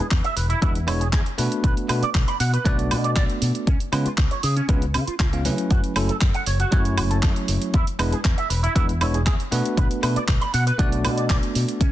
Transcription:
0.11 fingered electric bass E2, kick, clap, closed hi-hat
0.24 clean electric guitar E5, closed hi-hat
0.36 fingered electric bass E1, clean electric guitar B4, open hi-hat
0.50 clean electric guitar E4, closed hi-hat
0.61 fingered electric bass E2, tine electric piano G#3 B3 D4 E4 B4, clean electric guitar E4, kick, closed hi-hat
0.75 closed hi-hat
0.87 fingered electric bass E1, tine electric piano G#3 B3 D4 E4 C#5, clean electric guitar E4, open hi-hat, high woodblock
1.01 clean electric guitar G#4, closed hi-hat
1.13 fingered electric bass E2, clean electric guitar G#4, kick, clap, closed hi-hat
1.26 closed hi-hat
1.38 fingered electric bass B2, tine electric piano A3 B3 D4 F#4 B4, open hi-hat
1.52 closed hi-hat
1.64 fingered electric bass B1, clean electric guitar B4, kick, closed hi-hat
1.77 closed hi-hat
1.89 fingered electric bass B2, tine electric piano A3 B3 D4 F#4 B4, open hi-hat, high woodblock
2.02 clean electric guitar D5, muted fingered electric bass stroke, closed hi-hat
2.15 fingered electric bass B1, kick, clap, closed hi-hat
2.28 clean electric guitar B5, closed hi-hat
2.40 fingered electric bass B2, clean electric guitar F#5, open hi-hat
2.53 clean electric guitar B4, closed hi-hat
2.64 fingered electric bass B1, tine electric piano A3 B3 D4 F#4 D5, clean electric guitar B4, kick, closed hi-hat
2.79 closed hi-hat
2.91 fingered electric bass B2, clean electric guitar B4, open hi-hat, high woodblock
3.04 clean electric guitar D5, closed hi-hat
3.16 fingered electric bass B1, clean electric guitar D5, kick, clap, closed hi-hat
3.30 closed hi-hat
3.42 fingered electric bass B2, open hi-hat
3.55 closed hi-hat
3.67 fingered electric bass C#2, clean electric guitar C#4, kick, closed hi-hat
3.80 closed hi-hat
3.92 fingered electric bass C#3, tine electric piano G#3 B3 C#4 F4 B4, open hi-hat, high woodblock
4.06 clean electric guitar F4, muted fingered electric bass stroke, closed hi-hat
4.18 fingered electric bass C#2, kick, clap, closed hi-hat
4.31 clean electric guitar C#5, closed hi-hat
4.43 fingered electric bass C#3, clean electric guitar G#4, open hi-hat
4.56 clean electric guitar C#4, closed hi-hat
4.68 fingered electric bass C#2, tine electric piano G#3 B3 C#4 F4 B4, clean electric guitar C#4, kick, closed hi-hat
4.82 closed hi-hat
4.94 fingered electric bass C#3, clean electric guitar C#4, open hi-hat, high woodblock
5.07 clean electric guitar F4, muted fingered electric bass stroke, closed hi-hat
5.20 fingered electric bass C#2, clean electric guitar F4, kick, clap, closed hi-hat
5.32 tine electric piano G#3 B3 C#4 F4 F5, closed hi-hat
5.45 fingered electric bass C#3, tine electric piano F#3 A3 C#4 E4 B4, open hi-hat
5.58 closed hi-hat
5.71 fingered electric bass F#2, clean electric guitar F#4, kick, closed hi-hat
5.84 closed hi-hat
5.96 fingered electric bass F#1, tine electric piano F#3 A3 C#4 E4 A4, open hi-hat, high woodblock
6.09 clean electric guitar A4, muted fingered electric bass stroke, closed hi-hat
6.21 fingered electric bass F#2, kick, clap, closed hi-hat
6.34 clean electric guitar F#5, closed hi-hat
6.46 fingered electric bass F#1, clean electric guitar C#5, open hi-hat
6.60 clean electric guitar F#4, closed hi-hat
6.71 fingered electric bass F#2, tine electric piano F#3 A3 C#4 E4 C#5, clean electric guitar F#4, kick, closed hi-hat
6.85 closed hi-hat
6.97 fingered electric bass F#1, clean electric guitar F#4, open hi-hat, high woodblock
7.11 clean electric guitar A4, closed hi-hat
7.23 fingered electric bass F#2, clean electric guitar A4, kick, clap, closed hi-hat
7.36 closed hi-hat
7.48 fingered electric bass F#1, open hi-hat
7.62 closed hi-hat
7.74 fingered electric bass E2, clean electric guitar E4, kick, closed hi-hat
7.87 closed hi-hat
7.99 fingered electric bass E1, tine electric piano G#3 B3 D4 E4 B4, open hi-hat, high woodblock
8.12 clean electric guitar G#4, muted fingered electric bass stroke, closed hi-hat
8.25 fingered electric bass E2, kick, clap, closed hi-hat
8.38 clean electric guitar E5, closed hi-hat
8.50 fingered electric bass E1, clean electric guitar B4, open hi-hat
8.63 clean electric guitar E4, closed hi-hat
8.75 fingered electric bass E2, tine electric piano G#3 B3 D4 E4 B4, clean electric guitar E4, kick, closed hi-hat
8.89 closed hi-hat
9.01 fingered electric bass E1, tine electric piano G#3 B3 D4 E4 C#5, clean electric guitar E4, open hi-hat, high woodblock
9.14 clean electric guitar G#4, closed hi-hat
9.26 fingered electric bass E2, clean electric guitar G#4, kick, clap, closed hi-hat
9.40 closed hi-hat
9.51 fingered electric bass B2, tine electric piano A3 B3 D4 F#4 B4, open hi-hat
9.65 closed hi-hat
9.77 fingered electric bass B1, clean electric guitar B4, kick, closed hi-hat
9.91 closed hi-hat
10.03 fingered electric bass B2, tine electric piano A3 B3 D4 F#4 B4, open hi-hat, high woodblock
10.16 clean electric guitar D5, muted fingered electric bass stroke, closed hi-hat
10.28 fingered electric bass B1, kick, clap, closed hi-hat
10.41 clean electric guitar B5, closed hi-hat
10.54 fingered electric bass B2, clean electric guitar F#5, open hi-hat
10.67 clean electric guitar B4, closed hi-hat
10.78 fingered electric bass B1, tine electric piano A3 B3 D4 F#4 D5, clean electric guitar B4, kick, closed hi-hat
10.92 closed hi-hat
11.05 fingered electric bass B2, clean electric guitar B4, open hi-hat, high woodblock
11.17 clean electric guitar D5, closed hi-hat
11.30 fingered electric bass B1, clean electric guitar D5, kick, clap, closed hi-hat
11.43 closed hi-hat
11.55 fingered electric bass B2, open hi-hat
11.69 closed hi-hat
11.81 fingered electric bass C#2, clean electric guitar C#4, kick, closed hi-hat

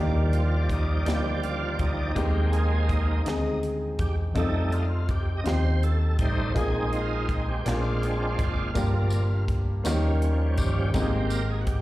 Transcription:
Already playing: fingered electric bass D#2, grand piano D#3 A#3 D4 D#4 G4, tonewheel organ F3 G3 D5
0.33 tonewheel organ F4, closed hi-hat
0.69 tonewheel organ D#4, kick, closed hi-hat
1.05 fingered electric bass D2, grand piano A#3 D4 D#4 E4, tonewheel organ G4, snare, closed hi-hat
1.14 grand piano F4
1.36 tonewheel organ G4
1.43 tonewheel organ F4, closed hi-hat
1.79 fingered electric bass D2, tonewheel organ D#4, kick, closed hi-hat
2.14 fingered electric bass D#2, grand piano D#3 G#3 B3 D#4 G4, tonewheel organ G#3 A#3 C4 G4, kick, closed hi-hat
2.22 grand piano C4
2.53 tonewheel organ G#4, closed hi-hat
2.89 tonewheel organ D#4, kick, closed hi-hat
3.25 fingered electric bass D2, grand piano G#3 C4 D#4 G#4, snare, closed hi-hat
3.63 closed hi-hat
3.99 fingered electric bass E2, tonewheel organ G4, kick, closed hi-hat
4.35 fingered electric bass F2, tonewheel organ G3 A3 D#4 A4, grand piano C4 D#4 F4 A4, kick, closed hi-hat
4.72 tonewheel organ F4, closed hi-hat
5.09 tonewheel organ G4, kick, closed hi-hat
5.37 tonewheel organ D#5
5.44 fingered electric bass D#2, grand piano C4 D#4 F4 G4, tonewheel organ C5, snare, closed hi-hat
5.83 tonewheel organ A4, closed hi-hat
6.19 fingered electric bass A1, tonewheel organ G3 A3 D#4 C5, kick, closed hi-hat
6.54 fingered electric bass A#1, grand piano A#2 A#3 D#4 F4 G#4, tonewheel organ G#3 C4 D#4 G#4, kick, closed hi-hat
6.93 tonewheel organ F4, closed hi-hat
7.29 tonewheel organ D#4, kick, closed hi-hat
7.49 tonewheel organ G4
7.65 fingered electric bass A#1, grand piano A#2 A#3 D4 F4 G4, tonewheel organ G#3 C4 D4 F4, snare, closed hi-hat
7.74 grand piano G#4
8.03 closed hi-hat
8.39 fingered electric bass F#1, kick, closed hi-hat
8.75 fingered electric bass G1, grand piano G2 A#3 D4 F4 G4, tonewheel organ F3 A#3 D4, kick, closed hi-hat, tambourine
9.10 closed hi-hat, tambourine
9.48 kick, closed hi-hat
9.84 fingered electric bass D#2, grand piano D#3 A#3 C#4 D#4 F#4, tonewheel organ F3 G3 C#4, snare, closed hi-hat, tambourine
9.93 grand piano G4
10.22 closed hi-hat
10.58 fingered electric bass G1, tonewheel organ G4, kick, closed hi-hat, tambourine
10.93 fingered electric bass G#1, grand piano G#2 G#3 C4 D#4 F4, tonewheel organ A#3 C4 G4 G#4, kick, closed hi-hat, tambourine
11.02 grand piano G4
11.30 tonewheel organ A#4, closed hi-hat, tambourine
11.50 tonewheel organ G#4
11.61 tonewheel organ F#4
11.67 tonewheel organ G4, kick, closed hi-hat

